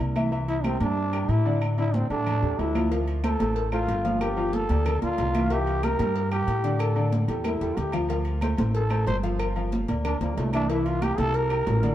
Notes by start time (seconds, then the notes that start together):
Already playing: A#3 A#4 D5
0.00 C2, high conga, low agogo
0.16 E3 E4 E5, high conga, low agogo, claves
0.32 E3 E4 E5, high conga, low agogo
0.48 E4, high conga, low agogo
0.64 G3 C4 G4 A#4, high conga, low agogo, claves
0.80 G2 G3 D4 G4 A#4, high conga, low agogo
0.97 high conga
1.13 G3 G4 A#4, high conga, low agogo, claves
1.29 A2 E4, high conga, low agogo
1.45 D3 D4 D5
1.61 high conga, low agogo, claves
1.78 D3 D4 E4 D5, high conga, low agogo
1.94 C4, high conga
2.10 A2 G3 D4 G4 A4, high conga, low agogo
2.27 high conga, low conga, low agogo, claves
2.42 E2 G3 G4 A4, high conga, low conga
2.59 D2 E4, high conga, low timbale, low agogo
2.75 F3 F4 F5, high conga, low agogo, claves
2.91 F3 F4 F5, cowbell, low agogo
3.08 high conga, low agogo
3.23 A3 A4 C5, cowbell, high conga, low agogo, claves
3.40 A1 A3 A4 C5, cowbell, high conga, low agogo
3.56 cowbell
3.72 A3 F4 A4 C5, high conga, low agogo, claves
3.88 G1, cowbell, high conga, low agogo
4.05 F3 F4 F5, cowbell, high conga
4.21 G4, cowbell, high conga, low agogo, claves
4.37 F3 F4 F5, high conga, low agogo
4.53 A4, cowbell, high conga
4.69 D2 A#3 G4 D5, cowbell, high conga, low agogo
4.86 cowbell, high conga, low conga, low agogo, claves
5.02 D2 A#3 F4 A#4 D5, cowbell, high conga
5.18 C2, cowbell, high conga, low timbale, low agogo
5.34 E3 E4 E5, cowbell, high conga, low agogo, claves
5.50 E3 E4 G4 E5, cowbell, low agogo
5.67 high conga, low agogo
5.83 G3 G4 A#4, cowbell, high conga, low agogo, claves
5.99 G2 G3 G4 A#4, cowbell, high conga, low agogo
6.16 cowbell
6.31 G3 G4 A#4, high conga, low agogo, claves
6.47 A2, cowbell, high conga, low agogo
6.64 D3 D4 D5, cowbell
6.79 A4, cowbell, high conga, low agogo, claves
6.96 D3 D4 D5, high conga, low agogo
7.12 cowbell, high conga
7.28 E2 G3 G4 A4, cowbell, low agogo
7.44 E4, cowbell, high conga, low agogo, claves
7.61 E2 G3 G4 A4, cowbell
7.77 D2 G4, cowbell, low conga, low agogo
7.92 F3 F4 F5, cowbell, low conga, low agogo, claves
8.09 F3 F4 F5, cowbell, high conga, low agogo
8.25 high conga, low agogo
8.41 A3 A4 C5, cowbell, high conga, low agogo, claves
8.58 A1 A3 A4 C5, cowbell, high conga, low agogo
8.75 A4, cowbell, high conga
8.90 A3 A4 C5, high conga, low agogo, claves
9.07 G1 C5, cowbell, high conga, low timbale, low agogo
9.23 F3 F4 F5, cowbell
9.39 cowbell, high conga, low agogo, claves
9.56 F3 F4 F5, high conga, low agogo
9.72 cowbell, high conga
9.88 D2 A#3 A#4 D5, cowbell, high conga, low agogo
10.05 D4, cowbell, high conga, low conga, low agogo, claves
10.20 D2 F3 A#3 A#4 D5, cowbell, high conga, low conga
10.37 C2 A3, cowbell, high conga, low timbale, low agogo
10.53 E3 D4 E4 E5, cowbell, high conga, low agogo, claves
10.69 E3 E4 E5, cowbell, low agogo
10.86 F4, high conga, low agogo
11.02 G3 G4 A#4, cowbell, high conga, low agogo, claves
11.18 C2 G3 G4 A4 A#4, cowbell, high conga, low agogo
11.34 A#4, cowbell
11.50 G3 G4 A#4, high conga, low agogo, claves
11.67 A1, cowbell, high conga, low timbale, low agogo
11.83 D3 D4 D5, cowbell, high conga